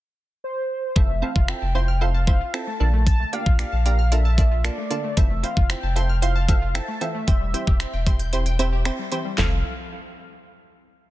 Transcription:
0.44 C5
0.96 F1 E3 C4 E4 F4 A4 E5, kick
1.09 A3
1.22 C4 E4 F4 A4 F5
1.36 F1 F4, kick
1.48 C4 E4 F4 A4 E5 G5, finger snap
1.62 F1 A5
1.75 C4 E4 F4 C5 C6
1.88 F6
2.01 C4 E4 F4 A4 F5 C6
2.14 A5
2.27 C4 E4 F4 C5 E5, kick
2.41 F4
2.54 C4 E4 F4 A4 A5, finger snap
2.67 A3
2.80 A#1 D3 A#3 D4 F4 A4
2.94 A3
3.07 A5, kick, closed hi-hat
3.20 A3
3.33 A#3 D4 F4 G4 F5, closed hi-hat
3.46 A#1 F4, kick
3.59 A#3 D4 F4 G4 D5 F5, finger snap, closed hi-hat
3.72 A#1 A5
3.85 A#3 D4 F4 G4 A#5, closed hi-hat
3.99 F6
4.12 A#3 D4 F4 A4 E5 A#5, closed hi-hat
4.25 A5
4.38 A#3 D4 F4 A4 D5, kick, closed hi-hat
4.51 F4
4.64 A#3 D4 F4 A4 D5, finger snap, closed hi-hat
4.78 A3
4.90 D3 A#3 D4 F4 A4, closed hi-hat
5.04 A3
5.17 F1 E3 C4 E4 F4 A4 E5, kick, closed hi-hat
5.30 A3
5.43 C4 E4 F4 C5 F5, closed hi-hat
5.57 F1 F4, kick
5.69 C4 E4 F4 C5 E5 G5, finger snap, closed hi-hat
5.83 F1 A5
5.96 C4 E4 F4 A4 C6, closed hi-hat
6.09 F6
6.22 C4 E4 F4 C5 F5 C6, closed hi-hat
6.36 A5
6.48 C4 E4 F4 A4 E5, kick, closed hi-hat
6.62 F4
6.75 C4 E4 F4 A4 A5, finger snap, closed hi-hat
6.88 A3
7.01 E3 C4 E4 F4 A4 E5, closed hi-hat
7.15 A3
7.27 E1 E3 C4 E4 G4 C5, kick, closed hi-hat
7.41 G3
7.54 C4 E4 G4 C5, closed hi-hat
7.67 E1 G4, kick
7.80 C4 E4 G4 C5 E5, finger snap, closed hi-hat
7.93 E1 G5
8.06 C4 E4 G4 C5 C6, kick, closed hi-hat
8.19 G6, closed hi-hat
8.33 C4 E4 G4 C5 C6, closed hi-hat
8.46 G5, closed hi-hat
8.59 C4 E4 G4 C5 E5, closed hi-hat
8.72 G4
8.85 C4 E4 G4 C5, finger snap, closed hi-hat
8.99 G3
9.12 E3 C4 E4 G4 C5, closed hi-hat
9.25 G3
9.38 F1 F3 C4 E4 F4 A4 F5, snare, clap, floor tom

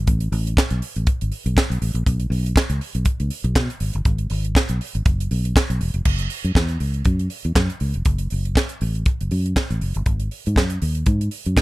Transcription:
0.07 A1, kick, closed hi-hat
0.20 closed hi-hat
0.32 A1, open hi-hat
0.47 closed hi-hat
0.57 kick, snare, clap
0.70 B1, closed hi-hat
0.82 open hi-hat
0.96 A1, closed hi-hat
1.07 kick, closed hi-hat
1.21 G#1, closed hi-hat
1.32 open hi-hat
1.46 B1, closed hi-hat
1.57 kick, snare, clap
1.70 B1, closed hi-hat
1.82 A1, open hi-hat
1.94 A#1, closed hi-hat
2.06 B1, kick, closed hi-hat
2.20 closed hi-hat
2.30 B1, open hi-hat
2.46 closed hi-hat
2.56 kick, snare, clap
2.70 C#2, closed hi-hat
2.81 open hi-hat
2.95 B1, closed hi-hat
3.05 kick, closed hi-hat
3.20 C#2, closed hi-hat
3.30 open hi-hat
3.44 B1, closed hi-hat
3.55 B2, kick, snare, clap
3.70 closed hi-hat
3.80 G#1, open hi-hat
3.93 G1, closed hi-hat
4.05 G#1, kick, closed hi-hat
4.18 closed hi-hat
4.30 G#1, open hi-hat
4.45 closed hi-hat
4.55 kick, snare, clap
4.69 B1, closed hi-hat
4.81 open hi-hat
4.95 G#1, closed hi-hat
5.05 F#1, kick, closed hi-hat
5.20 closed hi-hat
5.31 B1, open hi-hat
5.45 closed hi-hat
5.56 kick, snare, clap
5.70 B1, closed hi-hat
5.81 E1, open hi-hat
5.94 F1, closed hi-hat
6.05 F#1, kick, crash
6.18 closed hi-hat
6.30 open hi-hat
6.44 F#2, closed hi-hat
6.55 E2, kick, snare, clap
6.69 closed hi-hat
6.80 C#2, open hi-hat
6.94 closed hi-hat
7.05 F#2, kick, closed hi-hat
7.19 closed hi-hat
7.30 open hi-hat
7.44 E2, closed hi-hat
7.55 F#2, kick, snare, clap
7.70 closed hi-hat
7.80 C#2, open hi-hat
7.94 F1, closed hi-hat
8.05 F#1, kick, closed hi-hat
8.18 closed hi-hat
8.30 F#1, open hi-hat
8.45 closed hi-hat
8.55 kick, snare, clap
8.69 closed hi-hat
8.81 A1, open hi-hat
8.95 closed hi-hat
9.06 kick, closed hi-hat
9.21 F#1, closed hi-hat
9.31 F#2, open hi-hat
9.46 closed hi-hat
9.56 kick, snare, clap
9.70 A1, closed hi-hat
9.81 F#1, open hi-hat
9.94 G1, closed hi-hat
10.06 G#1, kick, closed hi-hat
10.20 closed hi-hat
10.31 open hi-hat
10.46 G#2, closed hi-hat
10.56 F#2, kick, snare, clap
10.70 closed hi-hat
10.82 D#2, open hi-hat
10.95 closed hi-hat
11.06 G#2, kick, closed hi-hat
11.21 closed hi-hat
11.31 open hi-hat
11.46 F#2, closed hi-hat
11.57 G#2, kick, snare, clap

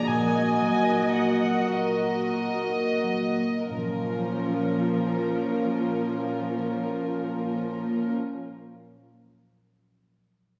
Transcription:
Already playing: A#2 F3 G#3 D4 G#4 A#4
0.07 A#2 F#4 A#4 D#5 G#5
0.34 A#3
0.61 F#3
0.88 D#4
1.14 F#5
1.44 F#4
1.72 F#4 A#4 D#5
2.03 F#4
2.68 D#4
3.03 F#3
3.38 A#3
3.68 A#2 F3 A#3 C#4 F4 A#4
3.77 F3
3.84 A#3
3.92 C#4
4.05 C#5

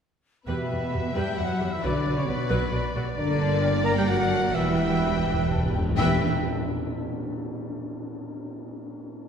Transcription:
0.46 E2 B2 G3 B3 B4 E5 G5
0.69 E2 G3 B4
0.91 E2 G3 G4 G5
1.14 E2 G3 G4 B4 G5 A5
1.37 E2 F#3 G3 F#4 B4 F#5 B5
1.59 E2 G3 G4
1.71 E3 E4 E5
1.82 B1 D3 F#3 D4 B4 D5
2.05 B1 F#3 B4
2.16 C#3 C#4 C#5
2.26 B1 B2 F#3 B3 F#4 B4 C#5 C#6
2.49 B1 F#3 B4
2.72 B1 F#3 B4 D5 B5
2.95 B1 F#3 F#4 B5
3.16 G1 D3 A#3 D4 A#4 D5 A#5
3.40 A5
3.63 A#4 G5
3.84 A#3 A#4 A#5
3.95 G3 G4 G5
4.07 F#3 F#4 A#4 F#5 A#5
4.31 A5
4.52 E1 E2 E3 G3 E4 B4 E5 G5
4.71 E2
4.79 E2
4.88 E2
4.96 E2
5.01 E2 B5
5.11 E2
5.18 E2
5.24 E2 G5
5.33 E2
5.42 E2
5.49 E2 A5
5.57 E2
5.65 E2
5.73 E2 G5
5.81 E2
5.89 E2
5.97 E1 E2 E3 G3 E4 B4 E5 G5, tam-tam

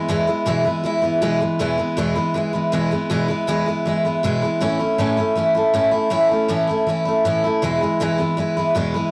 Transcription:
0.08 E2 B2 E3 G#3 B3 E4
0.27 E3 G#3 B3 E4
0.46 E2 B2 E3 G#3 B3 E4
0.64 E3 G#3 B3 E4
0.84 E3 G#3 B3 E4
1.02 E3 G#3 B3 E4
1.22 E2 B2 E3 G#3 B3 E4
1.40 E3 G#3 B3 E4
1.59 E2 B2 E3 G#3 B3 E4
1.78 E3 G#3 B3 E4
1.97 E2 B2 E3 G#3 B3 E4
2.15 E3 G#3 B3 E4
2.34 E3 G#3 B3 E4
2.53 E3 G#3 B3 E4
2.72 E2 B2 E3 G#3 B3 E4
2.91 E3 G#3 B3 E4
3.10 E2 B2 E3 G#3 B3 E4
3.28 E3 G#3 B3 E4
3.47 E2 B2 E3 G#3 B3 E4
3.66 E3 G#3 B3 E4
3.85 E3 G#3 B3 E4
4.05 E3 G#3 B3 E4
4.23 E2 B2 E3 G#3 B3 E4
4.42 E3 G#3 B3 E4
4.61 A2 E3 A3 C#4 E4
4.79 A3 C#4 E4
4.98 A2 E3 A3 C#4 E4
5.17 A3 C#4 E4
5.36 E3 A3 C#4 E4
5.55 A3 C#4 E4
5.73 A2 E3 A3 C#4 E4
5.91 A3 C#4 E4
6.10 A2 E3 A3 C#4 E4
6.29 A3 C#4 E4
6.48 A2 E3 A3 C#4 E4
6.67 A3 C#4 E4
6.87 E3 A3 C#4 E4
7.05 A3 C#4 E4
7.25 A2 E3 A3 C#4 E4
7.44 A3 C#4 E4
7.62 E2 B2 E3 G#3 B3 E4
7.81 E3 G#3 B3 E4
8.00 E2 B2 E3 G#3 B3 E4
8.18 E3 G#3 B3 E4
8.37 E3 G#3 B3 E4
8.57 E3 G#3 B3 E4
8.75 E2 B2 E3 G#3 B3 E4
8.94 E3 G#3 B3 E4

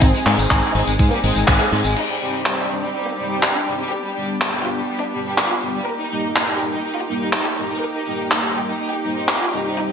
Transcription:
Already playing: C4 G#4
0.01 G#1 C4 D#4, kick, closed hi-hat, tambourine
0.14 G#3, closed hi-hat, tambourine
0.26 G#2 G#3 C4 D#4 G#4, clap, open hi-hat
0.38 G#1, closed hi-hat, tambourine
0.51 G#1 G#3, kick, clap, closed hi-hat
0.62 G#3, closed hi-hat, tambourine
0.75 G#1 G#3 C4 D#4 G#4, open hi-hat
0.87 G#1 G#3, closed hi-hat, tambourine
0.99 G#2 G#3, kick, closed hi-hat, tambourine
1.11 G3 A#3, closed hi-hat, tambourine
1.24 G#1 G#3 C4 D#4 G#4, open hi-hat
1.36 G#1 G#3, closed hi-hat, tambourine
1.48 G#1 G#3, kick, clap, closed hi-hat
1.60 G#3, closed hi-hat, tambourine
1.72 G#2 G#3 C4 D#4 G#4, open hi-hat
1.84 G#1 G#3, closed hi-hat, tambourine
1.96 C4 D#4 G4, crash
2.09 G3
2.21 G3 C4 D#4 G4
2.45 G3, clap
2.58 G3
2.70 G3 C4 D4 D#4 G4
2.82 G3
2.94 G3
3.07 A#3
3.19 G3 C4 D#4 G4
3.31 G3
3.43 G3, clap
3.55 D4
3.68 G3 C4 D#4 G4
3.80 G3
3.92 B3 D4 G4
4.04 G3
4.16 G3 B3 D4 G4
4.41 G3, clap
4.53 G3
4.65 G3 B3 D4 F4 G4
4.77 G3
4.89 G3
5.01 D4
5.14 G3 B3 D4 G4
5.26 G3
5.38 G3, clap
5.50 F4
5.62 G3 B3 D4 G4
5.75 G3
5.87 A#3 D#4 G4 A#4
5.99 D#4
6.11 G3 A#3 D#4 G4
6.36 D#4, clap
6.48 D#4
6.60 G3 A#3 D#4 G4
6.73 D#4
6.85 D#4
6.97 F4
7.09 G3 A#3 D#4 G4
7.21 D#4
7.33 D#4, clap
7.45 G4
7.58 G3 A#3 D#4 G4
7.70 D#4
7.82 A#4
7.95 D#4
8.07 G3 A#3 D#4 G4
8.31 D#4, clap
8.43 D#4
8.56 G3 A#3 D#4 G4
8.68 D#4
8.80 D#4
8.92 G4
9.04 G3 A#3 D#4 C5
9.17 D#4
9.28 D#4, clap
9.41 F4
9.53 G3 C4 D#4 G4
9.65 D#4
9.77 C4 D#4

